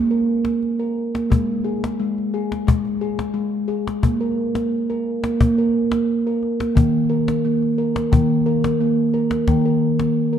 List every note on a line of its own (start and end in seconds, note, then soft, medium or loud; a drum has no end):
0.00 0.45 A#3 medium
0.11 0.45 A#4 medium
0.45 0.80 A#3 medium
0.45 cajon slap soft
0.63 cajon slap soft
0.79 1.14 A#4 medium
1.15 1.31 A#3 medium
1.15 cajon slap soft
1.30 1.98 G#3 medium
1.30 cajon bass medium
1.64 1.99 G#4 medium
1.84 cajon slap soft
2.00 2.33 G#3 medium
2.18 cajon slap soft
2.34 2.68 G#4 medium
2.52 cajon slap soft
2.67 3.01 G#3 medium
2.67 cajon bass medium
2.85 cajon slap soft
3.01 3.35 G#4 medium
3.19 cajon slap soft
3.34 3.69 G#3 medium
3.68 4.03 G#4 medium
3.68 cajon slap soft
3.87 cajon slap soft
4.03 4.21 A#3 medium
4.03 cajon bass medium
4.21 4.55 A#4 medium
4.55 4.89 A#3 medium
4.55 cajon slap soft
4.90 5.24 A#4 medium
4.90 cajon slap soft
5.24 5.40 A#3 medium
5.24 cajon slap soft
5.41 5.91 A#3 medium
5.41 cajon bass medium
5.58 5.92 A#4 medium
5.58 cajon slap soft
5.92 6.26 A#3 medium
5.92 cajon slap soft
6.27 6.60 A#4 medium
6.43 cajon slap soft
6.60 6.75 A#3 medium
6.60 cajon slap soft
6.75 8.08 D#3 medium
6.75 7.10 A#3 medium
6.75 cajon bass medium
7.10 7.44 A#4 medium
7.28 cajon slap soft
7.45 7.78 A#3 medium
7.62 cajon slap soft
7.78 8.12 A#4 medium
7.96 cajon slap medium
8.12 9.44 D#3 medium
8.12 8.46 A#3 medium
8.12 cajon bass medium
8.30 cajon slap soft
8.46 8.80 A#4 medium
8.64 cajon slap medium
8.80 9.14 A#3 medium
9.14 9.48 A#4 medium
9.14 cajon slap soft
9.31 cajon slap soft
9.48 10.39 D#3 medium
9.48 9.65 A#3 medium
9.48 cajon bass medium
9.48 cajon slap soft
9.65 9.99 A#4 medium
9.99 10.33 A#3 medium
9.99 cajon slap soft
10.33 10.39 A#4 medium